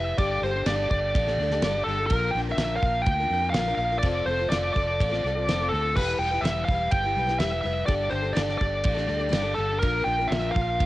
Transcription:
Already playing: F1 G3 E4 G4 B4 E5
0.18 G1 G3 D4 G4 A4 D5, kick, ride bell
0.42 G1 G3 D4 G4 A4 C5
0.52 D4 G4 A4
0.66 G1 G3 D4 G4 A4 D5, snare, ride bell
0.89 G1 G3 D4 G4 A4 D5, kick
1.15 A1, kick, ride bell
1.27 D4 G4 A4, snare
1.38 D2 G3 D4
1.42 G4 A4
1.50 G4 A4, snare
1.56 D4
1.61 G1 G3 D4 G4, snare, ride bell
1.66 A4
1.75 D4 G4 A4
1.84 G1 G3 A4
1.89 D4 G4 A4
2.00 D4 G4 A4
2.07 A#1 A#4, ride bell
2.11 A#2 F3 A#3 D4 F4 A#4, kick
2.31 A#1 G5
2.36 A#3 D4 F4 A#4
2.49 A#3 D4 F4 A#4 E5
2.57 A#1 A#2 F3 A#3 D4 F4 A#4, snare, ride bell
2.76 F5
2.82 A#1 A#3 F4 A#4, kick
3.02 G5
3.06 D2, kick, ride bell
3.20 A#3 D4 F4 A#4
3.30 F2 A#3 D4 F4 A#4
3.42 A#3 D4 F4 A#4
3.50 A#1 F5
3.54 A#2 F3 A#3 D4 F4, snare, ride bell
3.59 A#4
3.68 D4 F4 A#4
3.72 A#3 F5
3.77 A#1 A#3 D4 F4
3.82 A#4
3.92 A#3 D4 F4 A#4
3.99 D5
4.03 F1 F3 A3 C4 F4 A4, kick, ride bell
4.26 F1 A3 C4 F4 C5
4.31 A4
4.39 C4 F4 A4
4.49 F1 F3 A3 C4 F4 A4 D5, snare, ride bell
4.74 F1 A3 C4 F4 A4 D5, kick
5.01 A1, kick, ride bell
5.09 C4 F4 A4, snare
5.23 C2 A3 C4
5.27 F4 A4
5.36 C4 F4 A4
5.48 F1 F3 A3 C4 F4 A4, snare, ride bell
5.60 C4 F4 A4
5.69 D2 A3 C4 A4
5.74 F4 A4
5.82 C4 F4 A4
5.95 E1 E3 G3 E4 G4 B4, kick, crash
6.19 E1 G3 E4 G4 B4 G5
6.31 E4 G4 B4
6.41 E1 E3 G3 E4 G4 E5
6.45 B4, snare, ride bell
6.65 E1 G3 F5, kick
6.69 E4 G4 B4
6.91 G1 G5, kick, ride bell
7.03 E4 G4 B4
7.16 B1 G3 E4 G4 B4
7.27 E4 G4 B4, snare
7.39 E1 E3 G3 E4 G4 B4 E5, snare, ride bell
7.52 G4 B4
7.56 E4
7.61 F1 G3 E4 E5
7.65 G4 B4
7.86 G1 G3 D4 G4 A4 D5, kick, ride bell
8.09 G1 G3 D4 G4 A4 C5
8.22 D4 G4 A4
8.33 G1 G3 D4 G4 A4 D5, snare, ride bell
8.49 snare
8.58 G1 G3 D4 D5, kick
8.62 G4 A4
8.84 A1, kick, ride bell
8.94 G4 A4, snare
8.99 D4
9.07 D2 G3 D4 G4 A4
9.17 G4 A4
9.21 D4
9.29 G1 G3 D4 G4 A4, ride bell
9.33 snare
9.43 D4 G4 A4
9.54 G1 G3 D4 G4 A4
9.59 A4
9.69 D4 G4 A4
9.79 A#1 A#2 F3 A#3 D4 F4 A#4, kick, ride bell
9.83 A#4
10.04 A#1 A#3 D4 F4 A#4 G5
10.19 A#3 D4 F4 A#4
10.28 A#1 A#2 F3 E5
10.32 A#3 D4 F4 A#4, snare, ride bell
10.52 A#1 F5
10.56 A#3 D4 F4 A#4, kick
10.80 D2, kick, ride bell

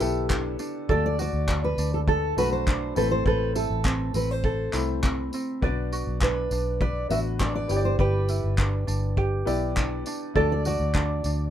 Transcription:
Already playing: G4 B4 D5
0.00 B1 B3 E4 G4 A4, tambourine
0.30 D4, kick, clap
0.59 D4, tambourine
0.88 D2 A3 D4 F#4 A4 D5, kick
1.06 D5
1.19 F#4 D5, tambourine
1.33 D2
1.48 D4, kick, clap
1.64 B4
1.78 D2 D4, tambourine
1.94 A4
2.08 A4, kick
2.37 B1 A3 D4 F#4 B4 B5, tambourine
2.52 C5
2.67 D4, kick, clap
2.95 A1 A3 C4 E4 A4 B4 C5, tambourine
3.11 C5
3.26 A1 A4 B4 C5, kick
3.55 E4 A4, tambourine
3.70 A1
3.85 C4, kick, clap
4.14 A1 C4 B4, tambourine
4.31 C5
4.44 A4, kick
4.72 C2 A3 C4 E4 B5, clap, tambourine
5.03 C4, kick, clap
5.33 C4, tambourine
5.62 B1 B3 D4 F#4 B4 D5, kick
5.92 F#4, tambourine
6.07 B1
6.21 D4 B4, kick, clap
6.51 B1 D4, tambourine
6.81 B4 D5, kick
7.09 A1 B3 D4 F#4 B4 E5, tambourine
7.40 D4 D5, kick, clap
7.55 D5
7.68 G1 B3 E4 G4 C#5, tambourine
7.77 D5
7.85 C5
7.99 G1 G4 B4, kick
8.29 E4, tambourine
8.44 G1
8.58 D4, kick, clap
8.87 G1 D4, tambourine
9.17 G4, kick
9.45 B1 B3 E4 G4 D5, tambourine
9.76 D4, kick, clap
10.06 D4, tambourine
10.34 D2 A3 D4 F#4 A4 D5, kick
10.52 D5
10.65 F#4 D5, tambourine
10.80 D2
10.95 D4, kick, clap
11.24 D2 D4, tambourine

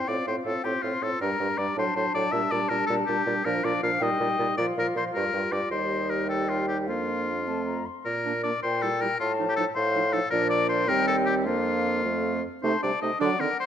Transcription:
0.08 A2 C4 F4 D5 F5
0.26 A2 C4 F4 C5
0.45 A2 C4 F4 A4
0.63 A2 C4 F4 G4 C6
0.82 A2 C4 F4
1.01 A2 C4 F4 A4
1.20 G2 G3 D4 A#4 A#5
1.40 G2 G3 D4
1.58 G2 G3 D4 D5
1.76 A2 F#3 D4 C5 A5
1.95 A2 F#3 D4 C5
2.14 A2 F#3 D4 D5
2.32 A#2 G3 D4 E5
2.51 A#2 G3 D4 D5
2.69 A#2 G3 D4 A#4
2.86 A#2 G3 D4 A4
3.06 A#2 G3 D4 G4
3.26 A#2 G3 D4
3.45 A#2 F3 D4 A#4 F5
3.64 A#2 F3 D4 D5
3.83 A#2 F3 D4 F5
4.00 A#2 G3 D#4 D#5 G5
4.20 A#2 G3 D#4
4.39 A#2 G3 D#4
4.57 A#2 F3 F4 D5 F5
4.76 A#2 F3 F4 A#4
4.96 A#2 F3 F4 C5
5.14 G2 G3 F4 A#4
5.33 G2 G3 F4
5.52 G2 G3 F4 D5
5.71 D#2 G3 D#4 C5 D#5
6.10 A#4
6.28 A4 G5
6.49 F4
6.69 G4
6.87 F2 A#3 D4 F4 F5
7.46 A3 C4 A5
7.66 A#5
7.86 C6
8.05 A#2 A#4
8.25 A#3 D4
8.43 A#3 D4 D5
8.62 A#2 C5 G5
8.82 G3 E4 A4
9.01 G3 E4 A#4
9.19 A2 F4 A5
9.39 F3 D#4
9.49 G4
9.56 F3 D#4 A4
9.75 A2 C5 F5
9.95 F3 D#4
10.13 F3 D#4 A4
10.30 A#2 F3 D4 A#4 D5
10.50 D5
10.69 C5
10.87 D#2 G3 C4 A#4 G5
11.07 A4
11.26 G4
11.46 F2 A#3 D4 F4 F5
12.04 F2 A3 C4
12.63 C3 A3 D#4 C5 A5
12.82 C3 G3 D4 D5
13.02 C3 A3 D#4 D#5
13.19 D3 F#3 D4 D5 F#5
13.39 D3 D#3 C4 A#4
13.60 C5

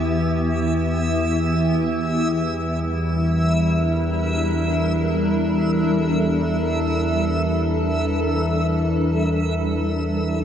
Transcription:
Already playing: E2 E3 B3 E4 G4 E5
1.72 G3
2.43 A#4
2.56 D4
4.51 A4

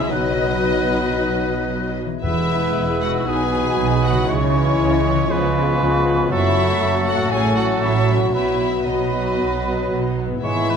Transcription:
Already playing: C#2 B2 C#3 G#3 B3 G#4 C#5 E5
0.02 F#4
0.07 B1 F#3 D#4 B4
0.11 B2 F#3 F#4 B4 D#5 F#6
2.06 E3
2.10 B3
2.15 G#4
2.19 E1 G#3 B3 E4 B4 E5 E6
2.23 E2 G#4 B4
2.49 G#3 E4
2.75 E1 E2
3.01 G#3 E4 F#4 F#5
3.09 B2
3.13 D#4
3.18 F#4
3.26 B1 B2 F#3 B3 D#4 F#4 G#4 B4 G#5 D#6
3.53 F#3 D#4
3.78 B1 B2
4.04 F#3 D#4 F#4 F#5
4.11 C#3
4.15 C#4
4.20 E4
4.24 G#4
4.28 C#2 C#3 G#3 C#4 E4 C#5 C#6
4.54 E3 C#4
4.80 C#2 C#3
5.05 E3 C#4
5.13 C#3
5.17 C#4
5.22 F4
5.26 G#3 B3 B4
5.30 C#2 C#3 F3 B3 F4 B4 C#6
5.55 F3 B3
5.81 C#2 C#3
6.05 F3 B3
6.13 F#2
6.18 C#4
6.22 F#4
6.27 F#3 A3 F#4 A4 C#6
6.31 F#1 F#2 E4 F#4 A4 E5
6.56 F#3 A3
6.82 F#1 F#2
7.06 F#3 A3 F#4 F#5
7.14 A2
7.19 C#4
7.24 F#4
7.28 F#3 G#4 A4 G#5
7.32 A1 A2 F#3 C#4 F#4 A4 C#6
7.56 F#3 C#4 F#4 F#5
7.81 A1 A2 E4 E5
8.08 F#3 C#4
8.16 B2
8.20 B3
8.25 F#4
8.33 B1 B2 F#3 B3 E4 F#4 B4 E5 B5
8.60 F#3 B3
8.85 B1 B2 F#3 D#4 F#4 B4 D#5 B5
9.13 F#3 B3
9.39 B1 B2
9.65 F#3 B3
9.91 B1 B2
10.17 F#3 B3
10.26 G#2
10.30 B3
10.35 E4
10.39 G#3 E4 G#4 E5
10.43 G#1 G#2 E3 B3 E4 C#5 G#5
10.70 B4

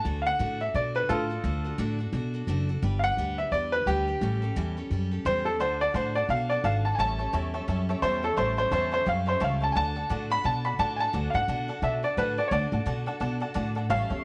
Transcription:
0.05 D2 D3 A3 D4 F#4 A4
0.22 A4 F5
0.27 D4 F#5
0.39 A2 D3 A3 D4 F#4 A4
0.60 D4 F#4 A4 E5
0.74 B2 A3 D4 F#4 A4 D5
0.95 D4 F#4 A4 B4
1.09 A2 D3 A3 D4 F4 F#4 A4
1.30 D4 F#4 A4
1.44 D2 D3 A3 D4 F#4 A4
1.64 D4 F#4 A4
1.78 A2 D3 A3 D4 F#4 A4
1.99 D4 F#4 A4
2.12 B2 A3 D4 F#4 A4
2.34 D4 F#4 A4
2.47 F#1 D3 A3 D4 F#4 A4
2.69 D4 F#4 A4
2.82 G1 G3 D4 G4 B4
2.99 B4 F5
3.04 D4 F#5
3.17 D2 G3 D4 G4 B4
3.38 D4 G4 B4 E5
3.52 E2 G3 D4 G4 B4 D5
3.72 D4 G4 B4
3.86 D2 G3 D4 G4 B4
4.07 D4 G4 B4
4.21 A1 A2 E3 G3 C#4 G4 A4
4.42 G3 C#4 G4 A4
4.56 E2 A2 E3 G3 C#4 G4 A4
4.77 G3 C#4 G4 A4
4.90 F#2 G3 C#4 G4 A4
5.11 G3 C#4 G4 A4
5.25 E2 A2 E3 G3 C#4 G4 A4 C5
5.45 G3 C#4 G4 A4
5.59 D2 D3 A3 D4 F#4 A4 C5 D5 F#5 A5
5.80 D4 F#4 A4 D5 F#5 A5
5.94 A2 D3 A3 D4 F#4 A4 C5 D5 F#5 A5
6.15 D4 F#4 A4 D5 F#5 A5
6.29 B2 A3 D4 F#4 A4 D5 F5 F#5 A5
6.50 D4 F#4 A4 D5 F#5 A5
6.64 G#1 D3 A3 D4 F#4 A4 D5 F5 F#5 A5
6.84 D4 F#4 A4 D5 F#5 A5
6.95 A1 C#5 E5 G#5
6.99 A2 E3 G3 C#4 G4 A4 A5
7.18 G3 C#4 G4 A4 C#5 E5 A5
7.33 E2 A2 E3 G3 C#4 G4 A4 C#5 E5 A5
7.54 G3 C#4 G4 A4 C#5 E5 A5
7.68 F#2 G3 C#4 G4 A4 C#5 E5 A5
7.89 G3 C#4 G4 A4 C#5 E5 A5
8.02 E2 A2 E3 G3 C#4 G4 A4 C5 C#5 E5 A5
8.23 G3 C#4 G4 A4 C#5 E5 A5
8.36 A1 A2 E3 G3 C#4 G4 A4 C5 C#5 E5 A5
8.57 G3 C#4 G4 A4 C5 C#5 E5 A5
8.71 E2 A2 E3 G3 C#4 G4 A4 C5 C#5 E5 A5
8.91 G3 C#4 G4 A4 C5 C#5 E5 A5
9.06 F#2 G3 C#4 G4 A4 C#5 E5 F5 G5
9.26 G3 C#4 G4 A4 C5 C#5 E5 A5
9.40 C#2 A2 E3 G3 C#4 G4 A4 C#5 E5 F5 A5
9.60 G3 C#4 G4 A4 C#5 E5 A5
9.72 D2 D3 A3 D5 F#5 G#5 A5
9.76 D4 F#4 A4 A5
9.96 D4 F#4 A4 D5 F#5 A5
10.09 A2 D3 A3 D4 F#4 A4 D5 F#5 A5
10.30 D4 F#4 A4 D5 F#5 A5 B5
10.44 B2 A3 D4 F#4 A4 D5 F#5 A5
10.64 D4 F#4 A4 D5 F#5 A5 B5
10.79 A2 D3 A3 D4 F#4 A4 D5 F#5 A5
10.96 A4 D5 F#5 G#5 A5
11.00 D4 F#4 A5
11.13 D2 D3 A3 D4 F#4 A4 D5 F#5 A5
11.30 A4 D5 F5
11.34 A2 D4 F#4 F#5 A5
11.48 B2 D3 A3 D4 F#4 A4 D5 F#5 A5
11.68 D4 F#4 A4 D5 F#5 A5
11.82 B2 A3 D4 F#4 A4 D5 E5 F#5 A5
12.03 D4 F#4 A4 D5 F#5 A5
12.17 A2 D3 A3 D4 F#4 A4 B4 D5 F#5 A5
12.38 D4 F#4 A4 D5 F#5 A5
12.48 D2 D3 C#5 D5
12.52 A3 D4 F#4 A4 D5 F#5 A5
12.72 A2 D4 F#4 A4 D5 F#5 A5
12.86 B2 D3 A3 D4 F#4 A4 D5 F#5 A5
13.06 D4 F#4 A4 D5 F#5 A5
13.20 B2 A3 D4 F#4 A4 D5 F#5 A5
13.40 D4 F#4 A4 D5 F#5 A5
13.54 A2 D3 A3 D4 F#4 A4 D5 F#5 A5
13.75 D4 F#4 A4 D5 F#5 A5
13.89 A1 A2 E3 G3 C#4 G4 A4 C#5 E5 F5 A5
14.10 E2 G3 C#4 G4 A4 C#5 E5 A5

